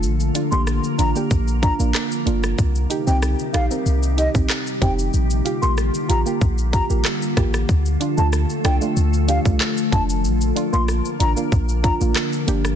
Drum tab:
HH |--x---x---x---x-|--x---x---x---x-|--x---x---x---x-|--x---x---x---x-|
SH |xxxxxxxxxxxxxxxx|xxxxxxxxxxxxxxxx|xxxxxxxxxxxxxxxx|xxxxxxxxxxxxxxxx|
CP |------------x---|------------x---|------------x---|------------x---|
SD |----r-------r--r|----r-r-----r---|----r-------r-rr|----r-r-----r---|
BD |--------o-o-----|o----------o--o-|--------o-o---o-|o----------o--o-|

HH |--x---x---x---x-|
SH |xxxxxxxxxxxxxxxx|
CP |------------x---|
SD |----r-------r--r|
BD |--------o-o-----|